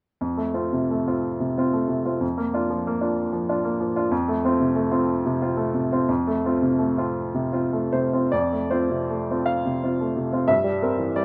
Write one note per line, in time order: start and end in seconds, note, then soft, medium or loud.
0.21 2.18 F2 soft
0.37 0.66 A3 soft
0.54 0.71 C4 soft
0.54 0.71 F4 soft
0.73 1.00 C3 soft
0.91 1.18 A3 soft
1.08 1.37 C4 soft
1.08 1.37 F4 soft
1.40 1.67 C3 soft
1.58 1.72 C4 soft
1.58 1.72 F4 soft
1.73 1.99 A3 soft
1.88 2.15 C3 soft
2.06 2.21 C4 soft
2.06 2.21 F4 soft
2.21 4.07 F2 soft
2.38 2.64 A#3 soft
2.54 2.69 D4 soft
2.54 2.69 F4 soft
2.70 2.96 F3 soft
2.87 3.12 A#3 soft
3.01 3.30 D4 soft
3.01 3.30 F4 soft
3.33 3.58 F3 soft
3.49 3.63 D4 soft
3.49 3.63 F4 soft
3.65 3.90 A#3 soft
3.80 4.05 F3 soft
3.96 4.10 D4 soft
3.96 4.10 F4 soft
4.11 6.05 F2 medium
4.28 4.53 A3 soft
4.45 4.58 C4 soft
4.45 4.59 F4 soft
4.60 4.85 C3 soft
4.76 5.01 A3 soft
4.92 5.21 C4 soft
4.92 5.21 F4 soft
5.26 5.52 C3 soft
5.42 5.57 C4 soft
5.42 5.57 F4 soft
5.57 5.84 A3 soft
5.74 6.02 C3 soft
5.92 6.07 C4 soft
5.92 6.08 F4 soft
6.09 8.27 F2 soft
6.27 6.55 A3 soft
6.46 6.61 C4 soft
6.46 6.61 F4 soft
6.62 6.90 C3 soft
6.79 7.07 A3 soft
6.98 7.30 C4 soft
6.98 7.30 F4 soft
7.35 7.64 C3 soft
7.53 7.70 C4 soft
7.53 7.70 F4 soft
7.73 8.05 A3 soft
7.93 8.24 C3 soft
7.93 8.31 C5 soft
8.13 8.30 C4 soft
8.13 8.30 F4 soft
8.32 10.46 F2 soft
8.32 8.70 D5 medium
8.52 8.82 A3 soft
8.71 8.88 C4 soft
8.71 8.88 F4 soft
8.71 9.48 C5 medium
8.90 9.21 C3 soft
9.10 9.40 A3 soft
9.30 9.63 C4 soft
9.30 9.63 F4 soft
9.46 10.48 F5 medium
9.66 9.93 C3 soft
9.83 9.98 C4 soft
9.83 9.99 F4 soft
10.01 10.26 A3 soft
10.17 10.43 C3 soft
10.33 10.47 C4 soft
10.33 10.48 F4 soft
10.48 11.25 G2 soft
10.48 11.14 E5 medium
10.64 10.91 G3 soft
10.82 10.97 C4 soft
10.82 10.97 A#4 soft
10.98 11.25 E3 soft
11.16 11.25 G3 soft
11.16 11.25 D5 medium